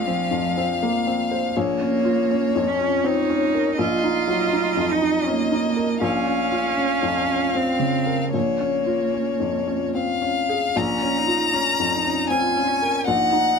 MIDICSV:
0, 0, Header, 1, 4, 480
1, 0, Start_track
1, 0, Key_signature, -5, "minor"
1, 0, Tempo, 745342
1, 1003, Time_signature, 3, 2, 24, 8
1, 4364, Tempo, 784314
1, 5324, Tempo, 810811
1, 6764, Tempo, 764331
1, 8531, End_track
2, 0, Start_track
2, 0, Title_t, "Violin"
2, 0, Program_c, 0, 40
2, 0, Note_on_c, 0, 77, 50
2, 1005, Note_on_c, 0, 73, 50
2, 1015, Note_off_c, 0, 77, 0
2, 2443, Note_off_c, 0, 73, 0
2, 2446, Note_on_c, 0, 75, 53
2, 3855, Note_off_c, 0, 75, 0
2, 3886, Note_on_c, 0, 77, 51
2, 5302, Note_off_c, 0, 77, 0
2, 5323, Note_on_c, 0, 73, 39
2, 6262, Note_off_c, 0, 73, 0
2, 6289, Note_on_c, 0, 77, 54
2, 6760, Note_on_c, 0, 82, 75
2, 6769, Note_off_c, 0, 77, 0
2, 7712, Note_off_c, 0, 82, 0
2, 7715, Note_on_c, 0, 80, 62
2, 8188, Note_off_c, 0, 80, 0
2, 8201, Note_on_c, 0, 78, 79
2, 8531, Note_off_c, 0, 78, 0
2, 8531, End_track
3, 0, Start_track
3, 0, Title_t, "Cello"
3, 0, Program_c, 1, 42
3, 43, Note_on_c, 1, 53, 63
3, 523, Note_off_c, 1, 53, 0
3, 1008, Note_on_c, 1, 58, 70
3, 1723, Note_on_c, 1, 61, 69
3, 1732, Note_off_c, 1, 58, 0
3, 1971, Note_on_c, 1, 63, 77
3, 1981, Note_off_c, 1, 61, 0
3, 2443, Note_off_c, 1, 63, 0
3, 2447, Note_on_c, 1, 65, 83
3, 3167, Note_on_c, 1, 63, 70
3, 3177, Note_off_c, 1, 65, 0
3, 3412, Note_on_c, 1, 58, 66
3, 3421, Note_off_c, 1, 63, 0
3, 3878, Note_off_c, 1, 58, 0
3, 3882, Note_on_c, 1, 61, 76
3, 4849, Note_on_c, 1, 60, 62
3, 4858, Note_off_c, 1, 61, 0
3, 5325, Note_off_c, 1, 60, 0
3, 5329, Note_on_c, 1, 58, 53
3, 6265, Note_off_c, 1, 58, 0
3, 6780, Note_on_c, 1, 61, 51
3, 7019, Note_on_c, 1, 63, 57
3, 7028, Note_off_c, 1, 61, 0
3, 7253, Note_on_c, 1, 61, 51
3, 7262, Note_off_c, 1, 63, 0
3, 7493, Note_on_c, 1, 63, 55
3, 7502, Note_off_c, 1, 61, 0
3, 7735, Note_on_c, 1, 65, 49
3, 7744, Note_off_c, 1, 63, 0
3, 7958, Note_on_c, 1, 61, 54
3, 7968, Note_off_c, 1, 65, 0
3, 8200, Note_off_c, 1, 61, 0
3, 8210, Note_on_c, 1, 63, 53
3, 8531, Note_off_c, 1, 63, 0
3, 8531, End_track
4, 0, Start_track
4, 0, Title_t, "Felt piano"
4, 0, Program_c, 2, 0
4, 0, Control_c, 2, 64, 127
4, 0, Note_on_c, 2, 34, 51
4, 0, Note_on_c, 2, 60, 40
4, 0, Note_on_c, 2, 65, 34
4, 49, Note_off_c, 2, 60, 0
4, 49, Note_on_c, 2, 60, 36
4, 143, Note_off_c, 2, 65, 0
4, 199, Note_on_c, 2, 41, 38
4, 303, Note_off_c, 2, 60, 0
4, 371, Note_on_c, 2, 60, 38
4, 457, Note_off_c, 2, 41, 0
4, 531, Note_on_c, 2, 58, 37
4, 623, Note_off_c, 2, 60, 0
4, 687, Note_off_c, 2, 58, 0
4, 691, Note_on_c, 2, 60, 34
4, 846, Note_on_c, 2, 72, 45
4, 942, Note_off_c, 2, 60, 0
4, 979, Note_off_c, 2, 34, 0
4, 1004, Note_off_c, 2, 72, 0
4, 1008, Note_on_c, 2, 34, 53
4, 1013, Control_c, 2, 64, 0
4, 1130, Control_c, 2, 64, 127
4, 1167, Note_on_c, 2, 61, 38
4, 1320, Note_on_c, 2, 65, 42
4, 1419, Note_off_c, 2, 61, 0
4, 1485, Note_on_c, 2, 61, 40
4, 1576, Note_off_c, 2, 65, 0
4, 1646, Note_on_c, 2, 41, 43
4, 1739, Note_off_c, 2, 61, 0
4, 1809, Note_on_c, 2, 61, 35
4, 1900, Note_off_c, 2, 41, 0
4, 1960, Note_on_c, 2, 60, 44
4, 2061, Note_off_c, 2, 61, 0
4, 2120, Note_off_c, 2, 60, 0
4, 2121, Note_on_c, 2, 61, 43
4, 2281, Note_on_c, 2, 70, 44
4, 2377, Note_off_c, 2, 61, 0
4, 2418, Note_off_c, 2, 34, 0
4, 2438, Note_on_c, 2, 34, 55
4, 2441, Note_off_c, 2, 70, 0
4, 2453, Control_c, 2, 64, 0
4, 2541, Control_c, 2, 64, 127
4, 2601, Note_on_c, 2, 63, 41
4, 2756, Note_on_c, 2, 54, 42
4, 2858, Note_off_c, 2, 63, 0
4, 2917, Note_on_c, 2, 63, 41
4, 3016, Note_off_c, 2, 54, 0
4, 3071, Note_on_c, 2, 41, 41
4, 3177, Note_off_c, 2, 63, 0
4, 3232, Note_on_c, 2, 63, 38
4, 3333, Note_off_c, 2, 41, 0
4, 3395, Note_on_c, 2, 61, 44
4, 3492, Note_off_c, 2, 63, 0
4, 3556, Note_on_c, 2, 63, 38
4, 3558, Note_off_c, 2, 61, 0
4, 3713, Note_on_c, 2, 70, 45
4, 3812, Note_off_c, 2, 63, 0
4, 3851, Note_off_c, 2, 34, 0
4, 3872, Note_on_c, 2, 34, 53
4, 3875, Note_off_c, 2, 70, 0
4, 3890, Control_c, 2, 64, 0
4, 4003, Control_c, 2, 64, 127
4, 4029, Note_on_c, 2, 61, 42
4, 4196, Note_on_c, 2, 65, 38
4, 4293, Note_off_c, 2, 61, 0
4, 4363, Note_on_c, 2, 61, 39
4, 4456, Note_off_c, 2, 65, 0
4, 4516, Note_on_c, 2, 41, 38
4, 4616, Note_off_c, 2, 61, 0
4, 4680, Note_on_c, 2, 61, 29
4, 4774, Note_off_c, 2, 41, 0
4, 4836, Note_on_c, 2, 60, 32
4, 4936, Note_off_c, 2, 61, 0
4, 4988, Note_on_c, 2, 49, 31
4, 4998, Note_off_c, 2, 60, 0
4, 5152, Note_on_c, 2, 70, 35
4, 5252, Note_off_c, 2, 49, 0
4, 5295, Note_off_c, 2, 34, 0
4, 5318, Note_off_c, 2, 70, 0
4, 5318, Note_on_c, 2, 34, 38
4, 5334, Control_c, 2, 64, 0
4, 5442, Control_c, 2, 64, 127
4, 5479, Note_on_c, 2, 61, 31
4, 5631, Note_on_c, 2, 65, 28
4, 5732, Note_off_c, 2, 61, 0
4, 5794, Note_on_c, 2, 61, 32
4, 5888, Note_off_c, 2, 65, 0
4, 5949, Note_on_c, 2, 41, 30
4, 6053, Note_off_c, 2, 61, 0
4, 6112, Note_on_c, 2, 61, 29
4, 6213, Note_off_c, 2, 41, 0
4, 6273, Note_on_c, 2, 60, 29
4, 6374, Note_off_c, 2, 61, 0
4, 6432, Note_on_c, 2, 61, 30
4, 6439, Note_off_c, 2, 60, 0
4, 6595, Note_on_c, 2, 68, 35
4, 6694, Note_off_c, 2, 61, 0
4, 6736, Note_off_c, 2, 34, 0
4, 6754, Note_on_c, 2, 34, 53
4, 6757, Note_off_c, 2, 68, 0
4, 6775, Control_c, 2, 64, 0
4, 6864, Control_c, 2, 64, 127
4, 6915, Note_on_c, 2, 61, 39
4, 7074, Note_on_c, 2, 65, 38
4, 7176, Note_off_c, 2, 61, 0
4, 7239, Note_on_c, 2, 61, 42
4, 7335, Note_off_c, 2, 65, 0
4, 7404, Note_on_c, 2, 41, 37
4, 7498, Note_off_c, 2, 61, 0
4, 7560, Note_on_c, 2, 61, 35
4, 7660, Note_off_c, 2, 41, 0
4, 7721, Note_on_c, 2, 60, 38
4, 7817, Note_off_c, 2, 61, 0
4, 7882, Note_off_c, 2, 60, 0
4, 7889, Note_on_c, 2, 61, 34
4, 8047, Note_on_c, 2, 70, 40
4, 8141, Note_off_c, 2, 61, 0
4, 8173, Note_off_c, 2, 34, 0
4, 8204, Note_off_c, 2, 70, 0
4, 8207, Note_on_c, 2, 34, 52
4, 8215, Control_c, 2, 64, 0
4, 8330, Control_c, 2, 64, 127
4, 8364, Note_on_c, 2, 63, 42
4, 8531, Note_off_c, 2, 34, 0
4, 8531, Note_off_c, 2, 63, 0
4, 8531, End_track
0, 0, End_of_file